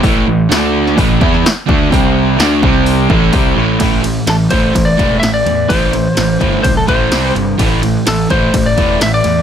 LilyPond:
<<
  \new Staff \with { instrumentName = "Lead electric guitar" } { \time 4/4 \key a \minor \tempo 4 = 127 r1 | r1 | r4 a'8 c''8. d''8. e''16 d''8. | c''2 c''16 a'16 c''4 r8 |
r4 a'8 c''8. d''8. e''16 d''8. | }
  \new Staff \with { instrumentName = "Distorted electric guitar" } { \clef bass \time 4/4 \key a \minor <a, e a>8 <a, e>8 <d a d'>4 <a, e a>8 <e b e'>8 r8 <d a d'>8 | <c g c'>4 <d a d'>8 <c g c'>4 <a, e a>8 <c g c'>8 <a, e a>8 | <a, e a>8 <a, e>8 <a, e>8 <a, e a>8 <a, e>8 <a, e a>8 <a, e>8 <a, e>8 | <a, e a>8 <a, e>8 <a, e>8 <a, e a>8 <a, e>8 <a, e a>8 <c g c'>8 <c g>8 |
<a, e a>8 <a, e>8 <a, e>8 <a, e a>8 <a, e>8 <a, e a>8 <a, e>8 <a, e>8 | }
  \new Staff \with { instrumentName = "Overdriven electric guitar" } { \clef bass \time 4/4 \key a \minor <a, e a>8 <a, e>8 <d a d'>4 <a, e a>8 <e b e'>8 r8 <d a d'>8 | <c g c'>4 <d a d'>8 <c g c'>4 <a, e a>8 <c g c'>8 <a, e a>8 | <a, e a>8 <a, e>8 <a, e>8 <a, e a>8 <a, e>8 <a, e a>8 <a, e>8 <a, e>8 | <a, e a>8 <a, e>8 <a, e>8 <a, e a>8 <a, e>8 <a, e a>8 <c g c'>8 <c g>8 |
<a, e a>8 <a, e>8 <a, e>8 <a, e a>8 <a, e>8 <a, e a>8 <a, e>8 <a, e>8 | }
  \new Staff \with { instrumentName = "Picked electric bass" } { \clef bass \time 4/4 \key a \minor a,,8 a,,8 d,4 a,,8 e,8 r8 d,8 | c,4 d,8 c,4 a,,8 c,8 a,,8 | a,,4 a,,8 a,,8 a,,8 e,,8 a,,8 e,8 | a,,4 a,,8 g,,8 c,8 a,,8 c,8 g,,8 |
a,,4 a,,8 a,,8 a,,8 e,,8 a,,8 e,8 | }
  \new DrumStaff \with { instrumentName = "Drums" } \drummode { \time 4/4 <hho bd>4 <hho sn>8. sn16 <hho bd>8 bd16 sn16 <hho sn>8 bd8 | <hho bd>4 <hho sn>8 bd8 hho8 bd8 <hho bd>4 | <bd cymr>8 cymr8 <cymr sn>8 <bd cymr>8 <bd cymr>8 <bd cymr>8 <cymr sn>8 cymr8 | <bd cymr>8 cymr8 <cymr sn>8 <bd cymr>8 <bd cymr>8 <bd cymr>8 <cymr sn>8 cymr8 |
<bd cymr>8 cymr8 <cymr sn>8 <bd cymr>8 <bd cymr>8 <bd cymr>8 <cymr sn>8 cymr8 | }
>>